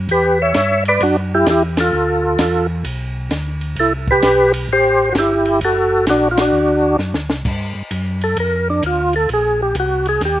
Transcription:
0.09 E2 G4 B4, kick, ride
0.42 C#5 E5
0.54 G2, kick, snare, hi-hat pedal, ride
0.85 B4 D5, ride
1.00 F#2 D4 F#4, kick, ride
1.35 E4 G4
1.46 E2 E4 G4, kick, snare, hi-hat pedal, ride
1.77 F4 A4, snare, ride
1.93 D2
2.39 E2, kick, snare, hi-hat pedal, ride
2.85 B1, kick, ride
3.31 D2, kick, snare, hi-hat pedal, ride
3.61 ride
3.76 C2 E4 A4, kick, ride
4.08 B4, kick
4.12 G4
4.22 B1, kick, snare, hi-hat pedal, ride
4.54 ride
4.69 A1 G4 C5, kick
5.12 G1 F#4, kick, snare, hi-hat pedal, ride
5.18 E4 G4
5.45 ride
5.61 F#1 F#4 A4, kick, ride
6.07 A#1 D4 F#4, kick, snare, hi-hat pedal, ride
6.31 F4
6.37 D4 F#4, snare, ride
6.52 D2
6.99 F#2, snare, hi-hat pedal
7.14 D2, snare
7.29 C2, snare
7.45 G2, kick, crash
7.75 G2
7.91 F#2, kick, hi-hat pedal, ride
8.21 A4, ride
8.37 F2 A#4, kick, ride
8.70 D4
8.83 D2 F4, kick, hi-hat pedal, ride
9.13 A4, ride
9.29 A#1, kick, ride
9.34 G#4
9.62 G4
9.75 C2, kick, hi-hat pedal, ride
9.80 F#4
10.06 G#4, ride
10.21 D#2, kick, snare, ride
10.25 G4

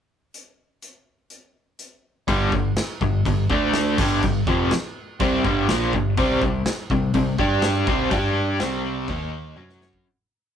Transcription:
0.34 closed hi-hat
0.82 closed hi-hat
1.30 closed hi-hat
1.79 closed hi-hat
2.28 G1 G2 D3 G3, kick, crash
2.52 G1 G2 D3, kick
2.76 snare, crash
3.01 G1 G2 D3, kick
3.25 G1 G2 D3, kick, crash
3.50 D2 D3 A3 D4, kick
3.73 snare, crash
3.98 G1 G2 D3 G3, kick, crash
4.23 G1 G2 D3, kick, crash
4.47 F1 F2 C3 F3, kick
4.71 snare, crash
5.20 C2 C3 G3 C4, kick, crash
5.44 G1 G2 D3 G3, kick
5.69 A#1 A#2 F3 A#3, snare, crash
5.93 G1 G2 D3, kick
6.17 C2 C3 G3 C4, kick, crash
6.41 C2 C3 G3, kick
6.66 snare, crash
6.90 C2 C3 G3, kick
7.14 C2 C3 G3, kick, crash
7.38 G2 G3 D4 G4, kick
7.62 snare, crash
7.87 C2 C3 G3 C4, kick
8.11 G2 G3 D4 G4, kick, crash
8.60 C2 C3 G3 C4, snare, crash
9.08 D#2 D#3 A#3 D#4, kick, crash
9.56 F#2 F#3 C#4 F#4, high tom
9.70 snare
9.81 snare
9.93 kick

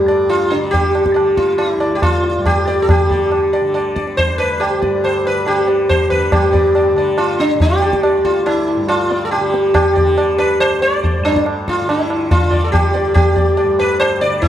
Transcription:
Already playing: D2 G2 D3
0.08 D5, tabla na
0.29 F4, tabla na
0.50 D3 D4, tabla te
0.71 G4, tabla tin, tabla ge
0.95 tabla na
1.06 tabla ke
1.14 D3 D5, tabla na
1.37 F4, tabla ke
1.58 E4, tabla na
1.76 D2
1.80 D5, tabla na
1.95 G4
2.02 F4, tabla na, tabla ge
2.24 tabla te
2.37 G2
2.46 G4, tabla na, tabla ge
2.68 D5, tabla te
2.82 A4
2.89 G4, tabla na, tabla ge
3.00 D3
3.11 D5, tabla ge
3.32 tabla na
3.53 D5, tabla na
3.61 D3
3.74 D5, tabla na
3.96 D5, tabla ke
4.07 tabla te
4.17 C5, tabla tin, tabla ge
4.22 D2
4.38 B4, tabla na
4.60 G4, tabla na
4.82 G2 D5, tabla ke
5.04 C5, tabla na
5.26 B4, tabla na
5.46 D3 G4, tabla na
5.67 D5, tabla te
5.89 C5, tabla na, tabla ge
6.06 D3 B4
6.11 tabla ge
6.32 G2 G4, tabla na, tabla ge
6.53 D5, tabla ge
6.75 D5, tabla na
6.94 D3, tabla na
6.98 D5
7.18 F4, tabla na
7.40 D4, tabla te
7.54 D3
7.60 G4, tabla tin, tabla ge
7.81 D5, tabla na
7.93 tabla ke
8.03 D5, tabla na
8.16 D2
8.25 F4, tabla ke
8.46 E4, tabla na
8.68 tabla na
8.76 G2
8.88 F4, tabla na
9.10 D5, tabla te
9.25 A4
9.31 G4, tabla na
9.38 D3
9.54 tabla te
9.74 G4, tabla na, tabla ge
9.95 D3 D5, tabla ge
10.18 D5, tabla na
10.38 B4, tabla na
10.59 D2 C5, tabla na
10.82 D5, tabla te
11.04 tabla tin, tabla ge
11.20 G2
11.25 D4, tabla na
11.36 tabla ke
11.46 tabla na
11.68 F4, tabla ke
11.81 D3
11.89 E4, tabla na
12.10 tabla na
12.31 F4, tabla na, tabla ge
12.42 D3
12.51 D5, tabla ge
12.64 A4
12.72 G4, tabla na, tabla ge
12.94 D5, tabla te
13.02 D2
13.14 G4, tabla na, tabla ge
13.36 D5, tabla ge
13.57 D5, tabla na
13.63 G2
13.79 B4, tabla na
14.00 C5, tabla na
14.21 D3 D5, tabla te
14.42 E4, tabla tin, tabla ge

